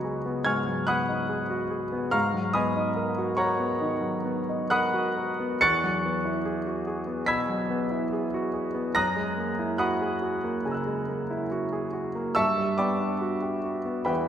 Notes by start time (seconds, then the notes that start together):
Already playing: C#2 F#3 B3 D#4 F#4 G#4 C#5 D#5 F#5 G#5 A#5 B5 C#6 D#6
0.04 G#4
0.26 B3
0.45 G#2 G#5 C#6 F6 G#6
0.68 F#3
0.87 B3 F#5 B5 D#6 F#6
1.09 D#4
1.29 G#4
1.50 F#4
1.70 G#4
1.92 B3
2.11 G#2 F5 A#5 C#6 F6
2.34 F#3
2.54 B3 D#5 G#5 B5 D#6
2.76 D#4
2.97 A#4
3.18 F#4
3.37 A#4 C#5 F#5 A#5 C#6
3.59 B3
3.81 D#3
4.01 F#3
4.25 B3
4.49 D#4
4.70 A#4 F#5 B5 D#6 F#6
4.94 F#4
5.17 A#4
5.40 B3
5.61 E2 C#6 F#6 A6 C#7
5.84 F#3
6.05 B3
6.25 E4
6.45 G#4
6.67 F#4
6.87 G#4
7.07 B3
7.26 B2 B5 E6 G#6 B6
7.49 F#3
7.70 B3
7.91 E4
8.13 G#4
8.34 F#4
8.54 G#4
8.74 B3
8.95 F#2 A#5 D#6 F#6 A#6
9.16 G#3
9.38 A#3
9.59 E4
9.78 F#4 F#5 B5 D#6 F#6
10.01 G#4
10.22 F#4
10.44 A#3
10.65 C#3 G#5 A#5
10.71 E6 F#6
10.87 G#3
11.09 A#3
11.31 E4
11.52 F#4
11.73 G#4
11.93 F#4
12.15 A#3
12.35 G2 E5 A5 C#6 E6
12.58 G3
12.78 B3 D5 G5 B5 D6
13.00 D4
13.21 F#4
13.42 G4
13.64 F#4
13.85 B3
14.05 E2 B4 E5 G5 B5